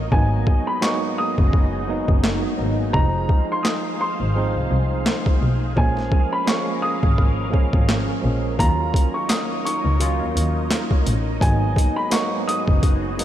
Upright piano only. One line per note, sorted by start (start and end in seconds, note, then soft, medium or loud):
0.12 0.64 G#5 loud
0.67 0.81 B5 medium
0.83 1.14 C#6 medium
1.18 1.70 D#6 medium
2.93 3.46 A#5 loud
3.52 3.65 C6 medium
3.63 3.96 D#6 medium
4.01 4.52 C6 medium
5.77 6.29 G#5 loud
6.33 6.46 B5 medium
6.49 6.80 C#6 medium
6.82 7.34 D#6 medium
8.59 9.11 A#5 loud
9.14 9.28 C#6 medium
9.29 9.61 D#6 medium
9.65 10.17 C#6 medium
11.41 11.93 G#5 loud
11.96 12.10 B5 medium
12.12 12.44 C#6 medium
12.48 12.99 D#6 medium